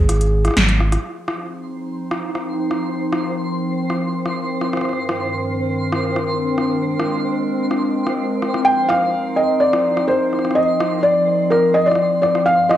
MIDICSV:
0, 0, Header, 1, 6, 480
1, 0, Start_track
1, 0, Tempo, 476190
1, 1051, Time_signature, 4, 2, 24, 8
1, 12874, End_track
2, 0, Start_track
2, 0, Title_t, "Felt piano"
2, 0, Program_c, 0, 0
2, 0, Note_on_c, 0, 68, 82
2, 523, Note_off_c, 0, 68, 0
2, 8717, Note_on_c, 0, 79, 104
2, 8957, Note_on_c, 0, 77, 108
2, 8971, Note_off_c, 0, 79, 0
2, 9438, Note_on_c, 0, 75, 88
2, 9459, Note_off_c, 0, 77, 0
2, 9677, Note_on_c, 0, 74, 94
2, 9692, Note_off_c, 0, 75, 0
2, 10130, Note_off_c, 0, 74, 0
2, 10157, Note_on_c, 0, 72, 92
2, 10636, Note_on_c, 0, 75, 94
2, 10658, Note_off_c, 0, 72, 0
2, 11089, Note_off_c, 0, 75, 0
2, 11117, Note_on_c, 0, 74, 87
2, 11596, Note_on_c, 0, 70, 88
2, 11618, Note_off_c, 0, 74, 0
2, 11836, Note_on_c, 0, 75, 95
2, 11851, Note_off_c, 0, 70, 0
2, 11956, Note_on_c, 0, 74, 89
2, 11967, Note_off_c, 0, 75, 0
2, 12301, Note_off_c, 0, 74, 0
2, 12316, Note_on_c, 0, 74, 84
2, 12546, Note_off_c, 0, 74, 0
2, 12556, Note_on_c, 0, 77, 94
2, 12796, Note_on_c, 0, 75, 88
2, 12811, Note_off_c, 0, 77, 0
2, 12874, Note_off_c, 0, 75, 0
2, 12874, End_track
3, 0, Start_track
3, 0, Title_t, "Synth texture"
3, 0, Program_c, 1, 99
3, 1050, Note_on_c, 1, 72, 78
3, 12874, Note_off_c, 1, 72, 0
3, 12874, End_track
4, 0, Start_track
4, 0, Title_t, "Ambient pad"
4, 0, Program_c, 2, 92
4, 1051, Note_on_c, 2, 53, 76
4, 1188, Note_on_c, 2, 60, 82
4, 1286, Note_on_c, 2, 63, 81
4, 2059, Note_on_c, 2, 79, 77
4, 2173, Note_on_c, 2, 70, 74
4, 4891, Note_off_c, 2, 53, 0
4, 4891, Note_off_c, 2, 63, 0
4, 4892, Note_on_c, 2, 43, 67
4, 5036, Note_on_c, 2, 51, 84
4, 5497, Note_on_c, 2, 62, 84
4, 6811, Note_off_c, 2, 43, 0
4, 6811, Note_off_c, 2, 51, 0
4, 6811, Note_on_c, 2, 56, 72
4, 8731, Note_off_c, 2, 56, 0
4, 8731, Note_off_c, 2, 62, 0
4, 8732, Note_on_c, 2, 53, 74
4, 8832, Note_on_c, 2, 63, 67
4, 12571, Note_off_c, 2, 53, 0
4, 12572, Note_off_c, 2, 63, 0
4, 12572, Note_on_c, 2, 43, 87
4, 12707, Note_on_c, 2, 50, 71
4, 12820, Note_on_c, 2, 51, 83
4, 12874, Note_off_c, 2, 43, 0
4, 12874, Note_off_c, 2, 50, 0
4, 12874, Note_off_c, 2, 51, 0
4, 12874, Note_off_c, 2, 60, 0
4, 12874, Note_off_c, 2, 70, 0
4, 12874, Note_off_c, 2, 79, 0
4, 12874, End_track
5, 0, Start_track
5, 0, Title_t, "Sub bass"
5, 0, Program_c, 3, 38
5, 0, Note_on_c, 3, 32, 91
5, 494, Note_off_c, 3, 32, 0
5, 571, Note_on_c, 3, 32, 98
5, 975, Note_off_c, 3, 32, 0
5, 12874, End_track
6, 0, Start_track
6, 0, Title_t, "Drums"
6, 90, Note_on_c, 9, 37, 59
6, 90, Note_on_c, 9, 42, 84
6, 191, Note_off_c, 9, 37, 0
6, 191, Note_off_c, 9, 42, 0
6, 211, Note_on_c, 9, 42, 36
6, 311, Note_off_c, 9, 42, 0
6, 451, Note_on_c, 9, 37, 60
6, 451, Note_on_c, 9, 42, 34
6, 480, Note_off_c, 9, 37, 0
6, 480, Note_on_c, 9, 37, 51
6, 511, Note_off_c, 9, 37, 0
6, 511, Note_on_c, 9, 37, 40
6, 541, Note_off_c, 9, 37, 0
6, 541, Note_on_c, 9, 37, 33
6, 551, Note_off_c, 9, 42, 0
6, 571, Note_off_c, 9, 37, 0
6, 571, Note_on_c, 9, 37, 27
6, 571, Note_on_c, 9, 38, 110
6, 571, Note_on_c, 9, 42, 73
6, 601, Note_off_c, 9, 37, 0
6, 601, Note_on_c, 9, 37, 22
6, 630, Note_off_c, 9, 37, 0
6, 630, Note_on_c, 9, 37, 17
6, 661, Note_off_c, 9, 37, 0
6, 661, Note_on_c, 9, 37, 15
6, 672, Note_off_c, 9, 38, 0
6, 672, Note_off_c, 9, 42, 0
6, 690, Note_on_c, 9, 42, 38
6, 761, Note_off_c, 9, 37, 0
6, 791, Note_off_c, 9, 42, 0
6, 811, Note_on_c, 9, 37, 54
6, 911, Note_off_c, 9, 37, 0
6, 930, Note_on_c, 9, 37, 64
6, 930, Note_on_c, 9, 42, 54
6, 1031, Note_off_c, 9, 37, 0
6, 1031, Note_off_c, 9, 42, 0
6, 1290, Note_on_c, 9, 37, 81
6, 1391, Note_off_c, 9, 37, 0
6, 2130, Note_on_c, 9, 37, 78
6, 2231, Note_off_c, 9, 37, 0
6, 2371, Note_on_c, 9, 37, 55
6, 2472, Note_off_c, 9, 37, 0
6, 2730, Note_on_c, 9, 37, 52
6, 2831, Note_off_c, 9, 37, 0
6, 3150, Note_on_c, 9, 37, 69
6, 3251, Note_off_c, 9, 37, 0
6, 3931, Note_on_c, 9, 37, 51
6, 4031, Note_off_c, 9, 37, 0
6, 4291, Note_on_c, 9, 37, 54
6, 4391, Note_off_c, 9, 37, 0
6, 4651, Note_on_c, 9, 37, 49
6, 4752, Note_off_c, 9, 37, 0
6, 4771, Note_on_c, 9, 37, 54
6, 4811, Note_off_c, 9, 37, 0
6, 4811, Note_on_c, 9, 37, 45
6, 4851, Note_off_c, 9, 37, 0
6, 4851, Note_on_c, 9, 37, 37
6, 4891, Note_off_c, 9, 37, 0
6, 4891, Note_on_c, 9, 37, 29
6, 4931, Note_off_c, 9, 37, 0
6, 4931, Note_on_c, 9, 37, 23
6, 4971, Note_off_c, 9, 37, 0
6, 4971, Note_on_c, 9, 37, 20
6, 5072, Note_off_c, 9, 37, 0
6, 5131, Note_on_c, 9, 37, 74
6, 5232, Note_off_c, 9, 37, 0
6, 5971, Note_on_c, 9, 37, 69
6, 6072, Note_off_c, 9, 37, 0
6, 6211, Note_on_c, 9, 37, 53
6, 6312, Note_off_c, 9, 37, 0
6, 6631, Note_on_c, 9, 37, 46
6, 6732, Note_off_c, 9, 37, 0
6, 7051, Note_on_c, 9, 37, 68
6, 7152, Note_off_c, 9, 37, 0
6, 7771, Note_on_c, 9, 37, 48
6, 7871, Note_off_c, 9, 37, 0
6, 8131, Note_on_c, 9, 37, 54
6, 8231, Note_off_c, 9, 37, 0
6, 8491, Note_on_c, 9, 37, 47
6, 8592, Note_off_c, 9, 37, 0
6, 8611, Note_on_c, 9, 37, 52
6, 8712, Note_off_c, 9, 37, 0
6, 8971, Note_on_c, 9, 37, 69
6, 9072, Note_off_c, 9, 37, 0
6, 9810, Note_on_c, 9, 37, 69
6, 9911, Note_off_c, 9, 37, 0
6, 10050, Note_on_c, 9, 37, 55
6, 10151, Note_off_c, 9, 37, 0
6, 10411, Note_on_c, 9, 37, 21
6, 10471, Note_off_c, 9, 37, 0
6, 10471, Note_on_c, 9, 37, 26
6, 10531, Note_off_c, 9, 37, 0
6, 10531, Note_on_c, 9, 37, 33
6, 10591, Note_off_c, 9, 37, 0
6, 10591, Note_on_c, 9, 37, 37
6, 10692, Note_off_c, 9, 37, 0
6, 10891, Note_on_c, 9, 37, 76
6, 10992, Note_off_c, 9, 37, 0
6, 11611, Note_on_c, 9, 37, 51
6, 11712, Note_off_c, 9, 37, 0
6, 11971, Note_on_c, 9, 37, 25
6, 12011, Note_off_c, 9, 37, 0
6, 12011, Note_on_c, 9, 37, 33
6, 12051, Note_off_c, 9, 37, 0
6, 12051, Note_on_c, 9, 37, 43
6, 12152, Note_off_c, 9, 37, 0
6, 12331, Note_on_c, 9, 37, 46
6, 12432, Note_off_c, 9, 37, 0
6, 12450, Note_on_c, 9, 37, 56
6, 12551, Note_off_c, 9, 37, 0
6, 12811, Note_on_c, 9, 37, 81
6, 12874, Note_off_c, 9, 37, 0
6, 12874, End_track
0, 0, End_of_file